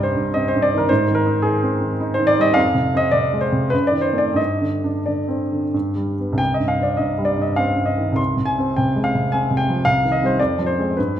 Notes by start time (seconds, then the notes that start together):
Already playing: C2 G2 G3 C4 D5 D#5 G5
0.03 C5
0.16 G2
0.34 C4 D#5
0.48 C5
0.55 G2
0.62 D5
0.74 D#3 A#4
0.89 G#2 C5
1.08 D#3
1.15 A#4
1.26 D#4
1.42 D#3 G#4
1.62 C4
1.81 D#3
2.00 D#4
2.14 C5
2.19 D#3
2.27 D5
2.38 G3 D#5
2.54 F2 F5
2.75 C3
2.94 C4 D#5
3.11 C3 D5
3.33 G#3
3.41 C5
3.52 C3
3.70 F#2 B4
3.87 D5
3.91 D#3
4.01 C5
4.13 A3 C4
4.18 D5
4.34 G2 D#5
4.61 D3
4.84 D4
5.06 D3 D5
5.28 C4
5.52 D3
5.74 G2
5.96 G3
6.19 G3 B3
6.32 C2
6.38 G5
6.54 D#5
6.60 G2
6.68 F5
6.79 C4 D5
6.97 G2 D#5
7.18 G3
7.25 D5
7.37 G2
7.42 D#5
7.56 C4 F5
7.78 G2
7.86 D#5
7.98 D#3
8.12 C2
8.16 C6
8.37 C3
8.46 G#5
8.58 C4
8.76 C3 G5
8.96 G#3
9.04 F5
9.15 C3
9.32 C4 G#5
9.51 C3
9.57 G5
9.69 F3
9.85 C2 F5
10.05 D#3
10.12 D#5
10.22 G3 C4 C5
10.40 F2 D5
10.58 F3
10.66 C5
10.79 G#3 C4
10.97 G2 B4